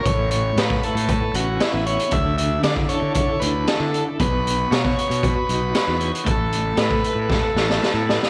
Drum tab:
HH |x-x-x-xxx-x-x-xx|x-x-x-x-x-x-x-x-|x-x-x-xxx-x-x-xx|x-x-x-x---------|
SD |----o-------o---|----o-------o---|----o-------o---|----o---o-ooo-oo|
BD |o----o--o-------|o----o--o-------|o----o--o-------|o----o--o-------|